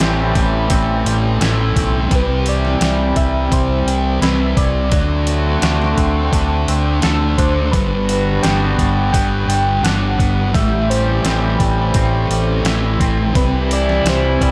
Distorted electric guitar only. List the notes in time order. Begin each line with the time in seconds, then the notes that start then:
0.00 A2 E3 A3
0.68 A2 E3 A3
1.38 A2 E3 A3
2.09 C3 G3 C4
2.79 C3 G3 C4
3.50 C3 G3 C4
4.20 C3 G3 C4
4.90 D3 A3 D4
5.60 D3 A3 D4
6.32 D3 A3 D4
7.01 D3 A3 D4
7.72 G2 D3 G3
8.43 G2 D3 G3
9.13 G2 D3 G3
9.83 G2 D3 G3
10.53 A2 E3 A3
11.24 A2 E3 A3
11.95 A2 E3 A3
12.64 A2 E3 A3
13.34 C3 G3 C4
14.05 C3 G3 C4